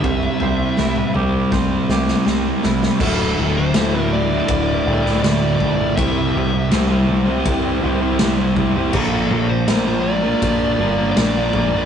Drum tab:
CC |----------------|x---------------|----------------|x---------------|
RD |----------------|----b---b---b---|b---b---b---b---|----b---b---b---|
SD |----o---o-ooo-oo|----o------oo---|----o-------o---|----o-------o---|
T2 |-----o----------|----------------|----------------|----------------|
FT |ooo---o---------|----------------|----------------|----------------|
BD |o-------o-------|o-------o-----o-|o-------o-----o-|o-------o-----o-|